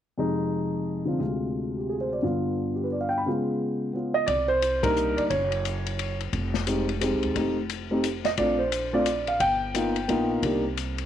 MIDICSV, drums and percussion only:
0, 0, Header, 1, 2, 480
1, 0, Start_track
1, 0, Key_signature, -3, "minor"
1, 0, Tempo, 341880
1, 250, Time_signature, 3, 2, 24, 8
1, 15524, End_track
2, 0, Start_track
2, 0, Title_t, "Drums"
2, 6003, Note_on_c, 9, 51, 54
2, 6004, Note_on_c, 9, 36, 29
2, 6143, Note_off_c, 9, 51, 0
2, 6144, Note_off_c, 9, 36, 0
2, 6490, Note_on_c, 9, 44, 45
2, 6490, Note_on_c, 9, 51, 57
2, 6631, Note_off_c, 9, 44, 0
2, 6631, Note_off_c, 9, 51, 0
2, 6786, Note_on_c, 9, 36, 76
2, 6788, Note_on_c, 9, 51, 68
2, 6927, Note_off_c, 9, 36, 0
2, 6929, Note_off_c, 9, 51, 0
2, 6969, Note_on_c, 9, 44, 50
2, 7110, Note_off_c, 9, 44, 0
2, 7271, Note_on_c, 9, 51, 39
2, 7411, Note_off_c, 9, 51, 0
2, 7447, Note_on_c, 9, 36, 28
2, 7447, Note_on_c, 9, 51, 53
2, 7587, Note_off_c, 9, 36, 0
2, 7587, Note_off_c, 9, 51, 0
2, 7747, Note_on_c, 9, 51, 38
2, 7888, Note_off_c, 9, 51, 0
2, 7934, Note_on_c, 9, 44, 43
2, 7934, Note_on_c, 9, 51, 51
2, 8074, Note_off_c, 9, 44, 0
2, 8074, Note_off_c, 9, 51, 0
2, 8234, Note_on_c, 9, 51, 42
2, 8374, Note_off_c, 9, 51, 0
2, 8411, Note_on_c, 9, 51, 54
2, 8551, Note_off_c, 9, 51, 0
2, 8712, Note_on_c, 9, 51, 40
2, 8852, Note_off_c, 9, 51, 0
2, 8885, Note_on_c, 9, 36, 31
2, 8886, Note_on_c, 9, 51, 49
2, 9026, Note_off_c, 9, 36, 0
2, 9026, Note_off_c, 9, 51, 0
2, 9182, Note_on_c, 9, 38, 44
2, 9322, Note_off_c, 9, 38, 0
2, 9362, Note_on_c, 9, 44, 54
2, 9362, Note_on_c, 9, 51, 59
2, 9502, Note_off_c, 9, 44, 0
2, 9502, Note_off_c, 9, 51, 0
2, 9671, Note_on_c, 9, 51, 41
2, 9812, Note_off_c, 9, 51, 0
2, 9846, Note_on_c, 9, 44, 54
2, 9846, Note_on_c, 9, 51, 63
2, 9987, Note_off_c, 9, 44, 0
2, 9987, Note_off_c, 9, 51, 0
2, 10147, Note_on_c, 9, 51, 37
2, 10287, Note_off_c, 9, 51, 0
2, 10325, Note_on_c, 9, 36, 32
2, 10329, Note_on_c, 9, 51, 51
2, 10465, Note_off_c, 9, 36, 0
2, 10469, Note_off_c, 9, 51, 0
2, 10805, Note_on_c, 9, 44, 41
2, 10805, Note_on_c, 9, 51, 57
2, 10945, Note_off_c, 9, 44, 0
2, 10945, Note_off_c, 9, 51, 0
2, 11284, Note_on_c, 9, 44, 59
2, 11284, Note_on_c, 9, 51, 61
2, 11424, Note_off_c, 9, 44, 0
2, 11424, Note_off_c, 9, 51, 0
2, 11577, Note_on_c, 9, 38, 29
2, 11580, Note_on_c, 9, 51, 36
2, 11717, Note_off_c, 9, 38, 0
2, 11720, Note_off_c, 9, 51, 0
2, 11759, Note_on_c, 9, 51, 51
2, 11761, Note_on_c, 9, 36, 31
2, 11899, Note_off_c, 9, 51, 0
2, 11902, Note_off_c, 9, 36, 0
2, 12244, Note_on_c, 9, 44, 43
2, 12244, Note_on_c, 9, 51, 60
2, 12384, Note_off_c, 9, 44, 0
2, 12384, Note_off_c, 9, 51, 0
2, 12717, Note_on_c, 9, 44, 58
2, 12717, Note_on_c, 9, 51, 66
2, 12858, Note_off_c, 9, 44, 0
2, 12858, Note_off_c, 9, 51, 0
2, 13019, Note_on_c, 9, 51, 38
2, 13160, Note_off_c, 9, 51, 0
2, 13198, Note_on_c, 9, 36, 32
2, 13201, Note_on_c, 9, 51, 55
2, 13339, Note_off_c, 9, 36, 0
2, 13342, Note_off_c, 9, 51, 0
2, 13684, Note_on_c, 9, 44, 54
2, 13684, Note_on_c, 9, 51, 58
2, 13824, Note_off_c, 9, 44, 0
2, 13824, Note_off_c, 9, 51, 0
2, 13983, Note_on_c, 9, 51, 42
2, 14123, Note_off_c, 9, 51, 0
2, 14164, Note_on_c, 9, 51, 54
2, 14304, Note_off_c, 9, 51, 0
2, 14639, Note_on_c, 9, 36, 28
2, 14643, Note_on_c, 9, 51, 51
2, 14779, Note_off_c, 9, 36, 0
2, 14783, Note_off_c, 9, 51, 0
2, 15126, Note_on_c, 9, 44, 43
2, 15126, Note_on_c, 9, 51, 55
2, 15267, Note_off_c, 9, 44, 0
2, 15267, Note_off_c, 9, 51, 0
2, 15419, Note_on_c, 9, 51, 42
2, 15524, Note_off_c, 9, 51, 0
2, 15524, End_track
0, 0, End_of_file